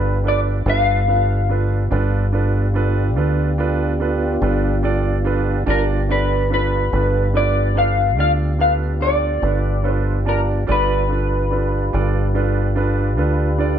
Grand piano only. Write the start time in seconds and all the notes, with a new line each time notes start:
Already playing: D4 F4 A4 B4
0.24 D4 F4 A4 B4
0.66 D4 F4 A4 B4
1.08 D4 F4 A4 B4
1.49 D4 F4 A4 B4
1.91 D4 F4 A4 B4
2.32 D4 F4 A4 B4
2.74 D4 F4 A4 B4
3.16 D4 F4 A4 B4
3.58 D4 F4 A4 B4
4.00 D4 F4 A4 B4
4.42 D4 F4 A4 B4
4.83 D4 F4 A4 D5
5.25 D4 F4 A4 B4
5.66 D4 F4 D5 A5
6.09 D4 F4 A4 D5
6.50 D4 F4 A4 B4
6.92 D4 F4 A4 B4
7.34 D4 F4 A4 B4
7.75 D4 F4 A4 B4
8.17 D4 F4 A4 D5
8.59 D4 F4 A4 B4
9.00 D4 F4 A4 D5
9.42 D4 F4 A4 B4
9.83 D4 F4 A4 B4
10.25 D4 F4 D5 A5
10.67 D4 F4 A4 D5
11.08 D4 F4 A4 B4
11.51 D4 F4 A4 B4
11.93 D4 F4 A4 D5
12.34 D4 F4 A4 B4
12.76 D4 F4 A4 B4
13.17 D4 F4 A4 B4
13.58 D4 F4 A4 D5